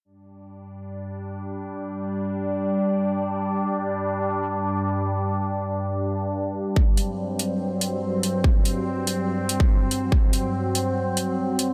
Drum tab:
HH |----------------|----------------|----------------|----------------|
BD |----------------|----------------|----------------|----------------|

HH |--x---x---x---x-|--x---x---x---x-|--x---x---x---x-|
BD |o---------------|o----------o----|o---------------|